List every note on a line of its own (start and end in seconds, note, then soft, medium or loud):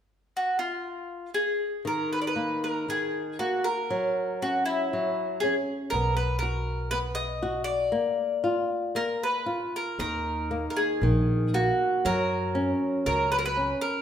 0.37 0.59 F#4 medium
0.59 1.29 F4 medium
1.34 1.82 G#4 medium
1.85 2.87 D#3 soft
1.85 2.12 A#4 medium
2.13 2.19 B4 medium
2.21 2.27 D5 soft
2.27 2.63 B4 medium
2.36 2.86 A#3 soft
2.64 2.87 A#4 medium
2.88 3.38 D#3 soft
2.88 3.39 G#4 medium
3.39 3.90 A#3 soft
3.39 3.66 F#4 medium
3.64 4.38 A#4 medium
3.90 4.92 F#3 medium
4.42 4.91 C#4 soft
4.42 4.65 F#4 medium
4.66 5.40 E4 medium
4.93 5.41 F#3 soft
5.40 5.91 C#4 soft
5.40 5.54 G#4 medium
5.90 7.88 B1 medium
5.90 6.91 B3 soft
5.90 6.14 A#4 medium
6.17 6.38 B4 medium
6.39 6.90 F#4 soft
6.39 6.91 A#4 medium
6.91 7.40 B3 soft
6.91 6.98 B4 medium
7.15 7.62 D#5 medium
7.43 7.91 F#4 soft
7.64 9.16 D5 medium
7.92 8.94 A#3 medium
8.44 8.94 F4 soft
8.95 9.46 A#3 soft
8.95 9.23 A#4 medium
9.23 9.76 B4 medium
9.46 9.97 F4 soft
9.76 9.99 A#4 medium
9.99 10.66 D#2 medium
9.99 11.02 D#3 medium
9.99 10.66 A#4 medium
10.51 11.01 A#3 soft
10.70 10.77 A#4 soft
10.77 11.50 G#4 medium
11.01 11.68 A#1 medium
11.01 11.52 D#3 soft
11.54 12.03 A#3 soft
11.54 12.07 F#4 medium
12.05 12.71 F#2 medium
12.05 13.05 F#3 medium
12.05 13.03 A#4 medium
12.55 13.04 C#4 medium
13.06 13.71 C#2 medium
13.06 13.55 F#3 soft
13.06 13.31 A#4 medium
13.32 13.38 B4 medium
13.39 13.45 A#4 medium
13.46 13.81 B4 medium
13.57 14.02 C#4 soft
13.81 14.02 A#4 medium